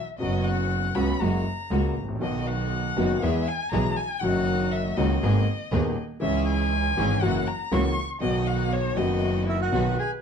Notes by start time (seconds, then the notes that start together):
0.18 F#1 F#2 C#3 F#3 B3 C#4 F#4 D#5
0.23 F#4
0.44 F#5
0.95 C#2 C#3 F#3 B3 C#4 F#4 B5
1.20 F#1 F#2 C#3 F#3 G#3 A#3 F#4 A#5
1.71 C#2 C#3 G#3 A#3 F#4
1.96 A1
2.03 G#1
2.08 A1
2.15 A#1
2.19 B1 B2 D#3 F#3 B3 D#4 F#4 D#5
2.23 F#4
2.47 F#5
2.96 F#1 F#2 D#3 F#3 B3 D#4 F#4
3.22 E2 E3 G#3 B3 E4 G#4 E5
3.47 G#5
3.72 B1 B2 E3 G#3 B3 E4 G#4 A#5
3.97 G#5
4.21 F#1 F#2 D#3 F#3 A#3 C#4 D#4 F#4 F#5
4.25 F#4
4.71 E5
4.96 C#2 C#3 D#3 A#3 C#4 D#4 F#4 D#5
5.22 G#1 G#2 D#3 A#3 B3 G#4
5.72 D#1 D#2 D#3 A#3 B3 G#4
6.20 C#2 C#3 E3 G#3 C#4 E4 G#4 E5
6.47 G#5
6.97 G#1 G#2 E3 G#3 C#4 E4 G#4
7.22 F#1 F#2 E3 F#3 A#3 C#4 E4 F#4 F#5
7.47 A#5
7.72 C#2 C#3 E3 A#3 C#4 E4 F#4 C#6
8.20 B1 B2 D#3 F#3 B3 D#4 F#4 D#5
8.24 F#4
8.47 F#5
8.72 C#5
8.95 F#1 F#2 D#3 F#3 B3 D#4 F#4 D#5
9.46 E4 A#4 E5
9.59 F#4 F#5
9.72 B1 B2 D#3 F#3 B3 D#4 F#4 B4
9.99 G#4 G#5